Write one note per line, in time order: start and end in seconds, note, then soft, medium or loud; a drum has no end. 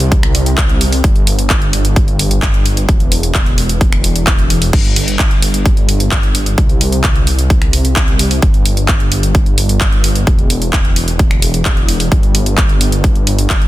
0.00 1.02 C2 medium
0.00 closed hi-hat medium
0.12 kick loud
0.12 closed hi-hat medium
0.23 finger snap medium
0.23 closed hi-hat soft
0.35 open hi-hat loud
0.46 closed hi-hat medium
0.58 kick loud
0.58 clap loud
0.58 closed hi-hat medium
0.69 closed hi-hat soft
0.81 open hi-hat loud
0.92 open hi-hat medium
1.04 2.86 G1 medium
1.04 kick loud
1.04 closed hi-hat medium
1.16 closed hi-hat soft
1.27 open hi-hat loud
1.39 closed hi-hat medium
1.50 kick loud
1.50 clap loud
1.50 closed hi-hat soft
1.62 closed hi-hat soft
1.73 open hi-hat loud
1.85 closed hi-hat medium
1.96 kick loud
1.96 closed hi-hat medium
2.08 closed hi-hat soft
2.19 open hi-hat loud
2.31 closed hi-hat medium
2.42 kick loud
2.42 clap loud
2.42 closed hi-hat medium
2.54 closed hi-hat soft
2.66 open hi-hat loud
2.77 closed hi-hat medium
2.89 4.71 E1 medium
2.89 kick loud
2.89 closed hi-hat medium
3.00 closed hi-hat soft
3.12 open hi-hat loud
3.23 closed hi-hat medium
3.35 kick loud
3.35 clap loud
3.35 closed hi-hat medium
3.46 closed hi-hat soft
3.58 open hi-hat loud
3.69 closed hi-hat medium
3.81 kick loud
3.81 closed hi-hat medium
3.93 finger snap medium
3.93 closed hi-hat soft
4.04 open hi-hat loud
4.16 closed hi-hat medium
4.27 kick loud
4.27 clap loud
4.27 closed hi-hat medium
4.39 closed hi-hat soft
4.50 open hi-hat loud
4.62 open hi-hat medium
4.73 6.56 G1 medium
4.73 kick loud
4.73 closed hi-hat medium
4.73 crash medium
4.85 closed hi-hat soft
4.96 open hi-hat loud
5.08 closed hi-hat medium
5.19 kick loud
5.19 clap loud
5.19 closed hi-hat medium
5.31 closed hi-hat soft
5.42 open hi-hat loud
5.54 closed hi-hat medium
5.66 kick loud
5.66 closed hi-hat medium
5.77 closed hi-hat soft
5.89 open hi-hat loud
6.00 closed hi-hat medium
6.11 kick loud
6.11 clap loud
6.11 closed hi-hat medium
6.23 closed hi-hat soft
6.35 open hi-hat loud
6.46 closed hi-hat medium
6.58 8.40 C2 medium
6.58 kick loud
6.58 closed hi-hat medium
6.69 closed hi-hat soft
6.81 open hi-hat loud
6.92 closed hi-hat medium
7.04 kick loud
7.04 clap loud
7.04 closed hi-hat soft
7.16 closed hi-hat soft
7.27 open hi-hat loud
7.39 closed hi-hat medium
7.50 kick loud
7.50 closed hi-hat medium
7.62 finger snap medium
7.62 closed hi-hat soft
7.73 open hi-hat loud
7.85 closed hi-hat medium
7.96 kick loud
7.96 clap loud
7.96 closed hi-hat medium
8.08 closed hi-hat soft
8.19 open hi-hat loud
8.31 open hi-hat medium
8.42 10.25 G1 medium
8.42 kick loud
8.42 closed hi-hat medium
8.54 closed hi-hat soft
8.65 open hi-hat loud
8.77 closed hi-hat medium
8.88 kick loud
8.88 clap loud
8.88 closed hi-hat soft
9.00 closed hi-hat soft
9.12 open hi-hat loud
9.23 closed hi-hat medium
9.35 kick loud
9.35 closed hi-hat medium
9.46 closed hi-hat soft
9.58 open hi-hat loud
9.69 closed hi-hat medium
9.81 kick loud
9.81 clap loud
9.81 closed hi-hat medium
9.92 closed hi-hat soft
10.04 open hi-hat loud
10.15 closed hi-hat soft
10.27 12.09 E1 medium
10.27 kick loud
10.27 closed hi-hat soft
10.39 closed hi-hat soft
10.50 open hi-hat loud
10.62 closed hi-hat soft
10.73 kick loud
10.73 clap loud
10.73 closed hi-hat soft
10.85 closed hi-hat soft
10.96 open hi-hat loud
11.08 closed hi-hat medium
11.19 kick loud
11.19 closed hi-hat medium
11.31 finger snap medium
11.31 closed hi-hat soft
11.42 open hi-hat loud
11.54 closed hi-hat soft
11.65 kick loud
11.65 clap loud
11.65 closed hi-hat medium
11.77 closed hi-hat soft
11.89 open hi-hat loud
12.00 open hi-hat medium
12.12 13.68 G1 medium
12.12 kick loud
12.12 closed hi-hat soft
12.23 closed hi-hat soft
12.35 open hi-hat loud
12.46 closed hi-hat soft
12.58 kick loud
12.58 clap loud
12.58 closed hi-hat soft
12.69 closed hi-hat soft
12.81 open hi-hat loud
12.92 closed hi-hat medium
13.04 kick loud
13.04 closed hi-hat medium
13.15 closed hi-hat soft
13.27 open hi-hat loud
13.39 closed hi-hat medium
13.50 kick loud
13.50 clap loud
13.50 closed hi-hat medium
13.62 closed hi-hat soft